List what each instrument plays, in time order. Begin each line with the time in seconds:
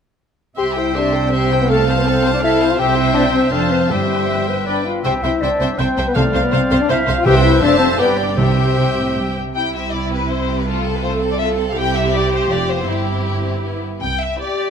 0.56 double bass section C2, cello section C3, french horn section G4, viola section G4, clarinet C5, oboe E5, violin section E5 C6, flute G5
0.75 french horn section E4, viola section C5, flute E5, violin section G5
0.94 french horn section D4, viola section G4, flute D5, violin section E5 C6
1.13 viola section C5, violin section G5
1.31 french horn section C4, viola section G4, flute C5, violin section E5 C6
1.51 viola section C5, violin section G5
1.60 french horn section B3, flute B4
1.69 french horn section A3, flute A4, viola section A4, oboe F5, violin section F5 A5
1.88 viola section C5, violin section F5 A5
1.98 french horn section B3, flute B4
2.06 french horn section C4, viola section A4, flute C5, violin section F5 A5
2.24 viola section C5, violin section F5 A5
2.34 french horn section D4, flute D5
2.43 french horn section E4, viola section A4, flute E5, violin section F5 A5
2.61 viola section C5, violin section F5 A5
2.71 french horn section F4, flute F5
2.79 double bass section C2, cello section C3, french horn section G4, viola section C5, clarinet C5, violin section E5 G5, oboe E5, flute G5
2.96 french horn section E4, flute E5
3.14 french horn section D4, flute D5
3.33 french horn section C4, flute C5
3.51 double bass section F1, cello section F2, french horn section D4, clarinet A4, viola section C5, flute D5, violin section F5 A5, oboe F5
3.70 french horn section C4, clarinet B4, flute C5
3.89 double bass section G1, timpani G2, cello section G2, french horn section G3, flute G4, clarinet C5, viola section C5, violin section E5 G5, oboe E5
4.29 clarinet E5
4.48 french horn section B3, flute B4, clarinet C5
4.66 french horn section D4, viola section B4, clarinet B4, oboe D5, flute D5, violin section D5 G5
4.85 french horn section F4, flute F5
5.03 double bass section C2, cello section C3, french horn section G4, viola section C5, clarinet C5, oboe E5, violin section E5 G5, flute G5
5.23 double bass section C2, cello section C3, french horn section E4, viola section C5, flute E5, violin section E5 G5
5.41 double bass section C2, cello section C3, french horn section D4, viola section C5, flute D5, violin section E5 G5
5.60 double bass section C2, cello section C3, viola section C5, violin section E5 G5
5.78 double bass section C2, cello section C3, french horn section C4, flute C5, viola section C5, violin section E5 G5, oboe G5
5.97 double bass section C2, cello section C3, viola section C5, violin section E5 G5
6.07 french horn section B3, flute B4
6.15 double bass section C2, cello section C3, timpani C3, french horn section A3, flute A4, viola section C5, clarinet D5, violin section F5, oboe F5
6.33 double bass section C2, cello section C3, viola section C5, violin section F5
6.42 french horn section B3, flute B4
6.51 double bass section C2, cello section C3, french horn section C4, flute C5, viola section C5, violin section F5
6.71 double bass section C2, cello section C3, viola section C5, violin section F5
6.79 french horn section D4, flute D5
6.88 double bass section C2, cello section C3, french horn section E4, viola section C5, clarinet C5, flute E5, violin section F5, oboe F5
7.07 double bass section C2, cello section C3, viola section C5, violin section F5
7.16 french horn section F4, flute F5
7.24 double bass section C2, cello section C3, timpani C3, french horn section G4, clarinet B4, viola section C5, oboe E5, violin section E5 G5, flute G5
7.42 french horn section E4, flute E5
7.61 double bass section F1, cello section F2, french horn section D4, clarinet A4, viola section C5, flute D5, violin section F5 A5
7.79 french horn section C4, flute C5
7.98 double bass section G1, cello section G2, french horn section B3, clarinet G4, viola section G4, flute B4, oboe D5, violin section D5 G5
8.17 french horn section D4, flute D5
8.37 double bass section C2, timpani C3, cello section C3, french horn section C4, viola section G4, clarinet G4, flute C5, oboe E5, violin section E5 G5
8.78 cello section C3
8.98 cello section A2
9.17 cello section G2
9.55 double bass section C2, cello section C3, viola section E4, violin section E4 G5
9.74 violin section C4 G4 E5
9.93 violin section E4 D5
10.12 violin section C4 G4 B4
10.30 violin section E4 C5
10.48 violin section C4 G4
10.58 violin section B4
10.67 violin section A3 F4 A4, viola section F4
10.85 violin section C4 A4
10.95 violin section B4
11.03 violin section A3 F4 C5, viola section A4
11.20 violin section C4 A4
11.32 violin section D5
11.39 violin section A3 F4 E5
11.58 violin section C4 A4
11.69 violin section F5
11.76 double bass section C2, cello section C3, violin section C4 E4 G5, viola section G4
11.95 violin section E5
12.14 violin section D5
12.32 violin section C5
12.49 double bass section F1, cello section F2, violin section A3 F4 D5
12.69 violin section B3 C5
12.87 double bass section G1, cello section G2, violin section C4 E4 G4, viola section E4
13.24 violin section E4
13.43 violin section C4
13.63 violin section B3
14.01 double bass section C2, cello section C3, violin section G5
14.21 violin section E5
14.39 violin section C4 E4 D5, viola section G4